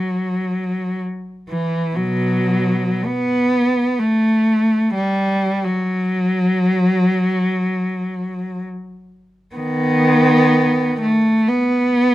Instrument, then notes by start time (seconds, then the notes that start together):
cello
Already playing: F#3
1.50 E3
1.96 B2 F#3
3.05 B3
3.99 A3
4.95 G3
5.65 F#3
9.55 D#3 B3
11.02 A3
11.48 B3